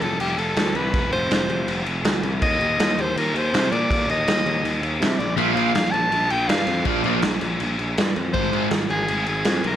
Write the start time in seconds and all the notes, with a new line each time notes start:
0.01 F1 A4, crash
0.19 F1 G4, crash
0.38 F1 A4, crash
0.56 D2, snare, crash
0.75 C2 B4, crash
0.94 F1, kick, crash
1.12 F1 C5, crash
1.30 F1, snare, crash
1.49 F1, crash
1.67 F1, crash
1.86 F1, crash
2.04 D2, snare, crash
2.23 C2, crash
2.42 D#2 D#5, kick, crash
2.60 D#2, crash
2.79 D#2, snare, crash
2.98 D#2 C5, crash
3.16 D#2 A#4, crash
3.35 D#2 C5, crash
3.53 C3, snare, crash
3.72 A#2 D5, crash
3.90 D#2, kick, crash
4.07 D#2 D#5, crash
4.26 D#2, snare, crash
4.45 D#2, crash
4.64 D#2, crash
4.82 D#2, crash
5.01 C3, snare, crash
5.18 A#1 D5, crash
5.36 A#1 A#2 F3 A#3 E5, crash
5.53 A#1 A#2 F3 A#3 F5, crash
5.75 A#1, snare, crash
5.91 A#1 A5, crash
6.12 A#1, crash
6.30 A#1 G5, crash
6.48 G2 F5, snare, crash
6.67 F2, crash
6.85 A#1 A#2 F3 A#3 D5, kick, crash
7.03 A#1 A#2 F3 A#3, crash
7.22 A#1, snare, crash
7.41 A#1, crash
7.60 A#1, crash
7.79 A#1, crash
7.97 G2, snare, crash
8.16 F2, crash
8.34 G#1 G#2 D#3 G#3 C5, kick, crash
8.52 G#1 G#2 D#3 G#3, crash
8.71 G#1, snare, crash
8.90 G#1 G#4, crash
9.08 G#1, crash
9.27 G#1 G#4, crash
9.45 F2, snare, crash
9.64 B1 A#4, crash